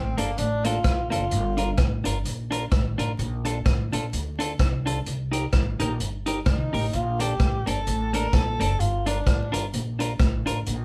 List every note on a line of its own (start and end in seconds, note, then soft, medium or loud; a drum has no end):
0.00 0.14 A1 loud
0.00 0.20 C4 medium
0.18 0.35 G1 medium
0.18 0.30 A#3 medium
0.18 0.40 A#3 medium
0.18 0.30 D4 medium
0.18 0.30 A4 medium
0.18 closed hi-hat medium
0.38 0.78 A1 loud
0.38 0.66 D4 loud
0.38 closed hi-hat medium
0.64 0.77 A#3 medium
0.64 0.77 D4 loud
0.64 1.10 F4 loud
0.64 0.77 A4 loud
0.64 closed hi-hat medium
0.84 1.07 A#1 medium
0.84 kick loud
0.84 cross-stick loud
0.84 closed hi-hat medium
1.10 1.29 F#1 medium
1.10 1.23 A#3 medium
1.10 1.23 D4 medium
1.10 1.74 F4 loud
1.10 1.24 A4 medium
1.10 closed hi-hat medium
1.31 1.72 G1 loud
1.31 closed hi-hat medium
1.57 1.70 D4 medium
1.57 1.70 F4 medium
1.57 1.70 A#4 medium
1.57 closed hi-hat medium
1.78 2.01 A1 medium
1.78 kick loud
1.78 cross-stick loud
1.78 closed hi-hat medium
2.04 2.22 G1 medium
2.04 2.17 D4 medium
2.04 2.17 F4 medium
2.04 2.18 A#4 medium
2.04 closed hi-hat loud
2.25 2.65 A#1 medium
2.25 closed hi-hat loud
2.51 2.63 D4 medium
2.51 2.64 F4 medium
2.51 2.64 A#4 loud
2.51 closed hi-hat medium
2.72 2.95 A1 medium
2.72 kick loud
2.72 cross-stick loud
2.72 closed hi-hat medium
2.98 3.16 A1 medium
2.98 3.10 D4 medium
2.98 3.11 F4 medium
2.98 3.11 A#4 medium
2.98 closed hi-hat medium
3.19 3.59 A#1 loud
3.19 closed hi-hat medium
3.45 3.57 D4 medium
3.45 3.57 F4 medium
3.45 3.58 A4 medium
3.45 closed hi-hat medium
3.65 3.89 A1 medium
3.65 muted clean electric guitar stroke soft
3.65 kick loud
3.65 cross-stick loud
3.65 closed hi-hat medium
3.92 4.10 A#1 medium
3.92 4.04 D4 medium
3.92 4.05 F4 medium
3.92 4.05 A4 medium
3.92 closed hi-hat medium
4.13 4.53 D2 loud
4.13 closed hi-hat medium
4.39 4.51 D4 loud
4.39 4.51 F4 loud
4.39 4.52 A4 loud
4.39 closed hi-hat medium
4.59 4.99 C2 medium
4.59 kick loud
4.59 cross-stick loud
4.59 closed hi-hat medium
4.86 4.98 D4 medium
4.86 4.98 F4 medium
4.86 4.98 A4 loud
4.86 closed hi-hat medium
5.06 5.46 C2 medium
5.06 closed hi-hat medium
5.32 5.44 D#4 medium
5.32 5.45 G4 medium
5.32 5.45 A#4 medium
5.32 closed hi-hat medium
5.53 5.76 A1 medium
5.53 muted clean electric guitar stroke soft
5.53 kick loud
5.53 cross-stick loud
5.53 closed hi-hat medium
5.80 5.97 A#1 loud
5.80 5.92 D#4 medium
5.80 5.92 G4 medium
5.80 5.92 A#4 loud
5.80 closed hi-hat medium
6.00 6.39 G1 medium
6.00 closed hi-hat medium
6.26 6.38 D#4 medium
6.26 6.39 G4 medium
6.26 6.39 A#4 medium
6.26 closed hi-hat medium
6.46 6.69 C2 medium
6.46 6.95 D#4 medium
6.46 kick loud
6.46 cross-stick loud
6.46 closed hi-hat medium
6.73 6.90 A1 medium
6.73 6.85 D#4 medium
6.73 6.85 G4 medium
6.73 6.86 A#4 medium
6.73 open hi-hat medium
6.93 7.33 A#1 loud
6.93 7.23 F4 loud
6.93 closed hi-hat medium
7.20 7.32 A#3 medium
7.20 7.32 D4 medium
7.20 7.68 G4 medium
7.20 7.33 A4 medium
7.20 closed hi-hat loud
7.40 7.63 A1 medium
7.40 muted clean electric guitar stroke soft
7.40 kick loud
7.40 cross-stick loud
7.40 closed hi-hat medium
7.66 7.84 G1 medium
7.66 7.78 A#3 medium
7.66 7.79 D4 medium
7.66 8.13 A4 loud
7.66 7.79 A4 medium
7.66 closed hi-hat medium
7.87 8.26 A1 loud
7.87 closed hi-hat medium
8.13 8.25 A#3 medium
8.13 8.26 D4 medium
8.13 8.26 A4 loud
8.13 8.36 A#4 loud
8.13 closed hi-hat medium
8.33 8.56 A#1 medium
8.33 8.81 A4 loud
8.33 kick loud
8.33 cross-stick loud
8.33 closed hi-hat medium
8.60 8.77 F#1 medium
8.60 8.72 A#3 medium
8.60 8.72 D4 medium
8.60 8.73 A4 medium
8.60 closed hi-hat medium
8.80 9.20 G1 medium
8.80 9.08 F4 loud
8.80 closed hi-hat medium
9.06 9.18 D4 medium
9.06 9.53 D4 medium
9.06 9.19 F4 medium
9.06 9.19 A#4 medium
9.06 closed hi-hat medium
9.26 9.49 A1 medium
9.26 muted clean electric guitar stroke soft
9.26 kick loud
9.26 cross-stick loud
9.26 closed hi-hat medium
9.52 9.70 G1 medium
9.52 9.65 D4 medium
9.52 9.65 F4 medium
9.52 9.65 A#4 loud
9.52 closed hi-hat loud
9.73 10.13 A#1 medium
9.73 closed hi-hat loud
9.99 10.11 D4 medium
9.99 10.12 F4 medium
9.99 10.12 A#4 medium
9.99 closed hi-hat medium
10.19 10.43 A1 medium
10.19 kick loud
10.19 cross-stick loud
10.19 closed hi-hat medium
10.46 10.64 A1 medium
10.46 10.58 D4 medium
10.46 10.58 F4 medium
10.46 10.59 A#4 loud
10.46 closed hi-hat medium
10.66 10.85 A#1 medium
10.66 closed hi-hat medium